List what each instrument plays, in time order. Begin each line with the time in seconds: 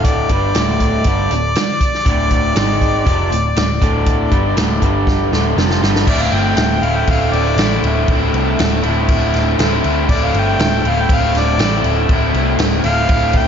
Already playing: picked electric bass D1, overdriven electric guitar D2 A2 D3
0.05 harmonica D5, kick, closed hi-hat
0.29 picked electric bass G1, overdriven electric guitar G2 D3 G3, kick, closed hi-hat
0.55 picked electric bass D1, overdriven electric guitar D2 A2 D3, snare, closed hi-hat
0.80 kick, closed hi-hat
1.04 picked electric bass G1, overdriven electric guitar G2 D3 G3, kick, closed hi-hat
1.31 picked electric bass D1, overdriven electric guitar D2 A2, closed hi-hat
1.55 snare, closed hi-hat
1.81 kick, closed hi-hat
1.94 snare
2.06 picked electric bass D1, overdriven electric guitar D2 A2 D3, kick, closed hi-hat
2.31 kick, closed hi-hat
2.55 picked electric bass G#1, overdriven electric guitar G#2 D#3 G#3, snare, closed hi-hat
2.81 kick, closed hi-hat
3.05 picked electric bass F1, overdriven electric guitar F2 C3 F3, kick, closed hi-hat
3.31 picked electric bass D1, overdriven electric guitar D2 A2, closed hi-hat
3.56 picked electric bass D1, overdriven electric guitar D2 A2, snare, closed hi-hat
3.81 picked electric bass D1, overdriven electric guitar D2 A2 D3, kick, closed hi-hat
4.06 kick, closed hi-hat
4.31 picked electric bass G1, overdriven electric guitar G2 D3 G3, kick, closed hi-hat
4.57 picked electric bass D1, overdriven electric guitar D2 A2 D3, snare, closed hi-hat
4.82 picked electric bass G1, overdriven electric guitar G2 D3 G3, kick, closed hi-hat
5.07 kick, snare
5.31 picked electric bass D1, overdriven electric guitar D2 A2 D3, snare
5.56 picked electric bass F1, overdriven electric guitar F2 C3 F3, snare
5.71 snare
5.81 picked electric bass G1, overdriven electric guitar G2 D3 G3, snare
5.96 snare
6.06 picked electric bass D1, overdriven electric guitar D2 A2 D3 A3 C4 E4, harmonica D5, kick, crash
6.21 harmonica F5
6.32 picked electric bass G1, harmonica G5, crash
6.57 picked electric bass D1, snare, crash
6.81 picked electric bass D1, overdriven electric guitar D2 A2 D3 A3 C4 E4, harmonica F5, crash
6.96 harmonica G5
7.07 picked electric bass D1, harmonica F5, kick, crash
7.32 picked electric bass D1, harmonica D5, crash
7.56 picked electric bass A1, overdriven electric guitar D2 A2 D3 A3 C4 E4, snare, crash
7.83 picked electric bass D1, crash
8.08 picked electric bass D1, overdriven electric guitar D2 A2 D3 A3 C4 E4, kick, crash
8.33 picked electric bass C2, crash
8.59 picked electric bass D1, snare, crash
8.82 picked electric bass D1, overdriven electric guitar D2 A2 D3 A3 C4 E4, crash
9.09 picked electric bass D1, kick, crash
9.33 picked electric bass D1, snare, crash
9.59 picked electric bass D1, overdriven electric guitar D2 A2 D3 A3 C4 E4, snare, crash
9.84 picked electric bass D2, crash
10.09 picked electric bass D1, overdriven electric guitar D2 A2 D3 A3 C4 E4, harmonica D5, kick, crash
10.24 harmonica F5
10.34 picked electric bass G1, crash
10.40 harmonica G5
10.59 picked electric bass D1, snare, crash
10.84 picked electric bass D1, overdriven electric guitar D2 A2 D3 A3 C4 E4, crash
10.89 harmonica F5
11.01 harmonica G5
11.09 picked electric bass D1, kick, crash
11.14 harmonica F5
11.34 picked electric bass D1, snare, crash
11.39 harmonica D5
11.58 picked electric bass A1, overdriven electric guitar D2 A2 D3 A3 C4, snare, crash
11.63 overdriven electric guitar E4
11.84 picked electric bass D1, crash
12.09 picked electric bass D1, overdriven electric guitar D2 A2 D3 A3 C4 E4, kick, crash
12.34 picked electric bass C2, crash
12.58 picked electric bass D1, snare, crash
12.84 picked electric bass D1, overdriven electric guitar D2 A2 D3 A3 C4 E4, harmonica F5, crash
13.09 picked electric bass D1, kick, crash
13.33 picked electric bass D1, harmonica G5, kick, crash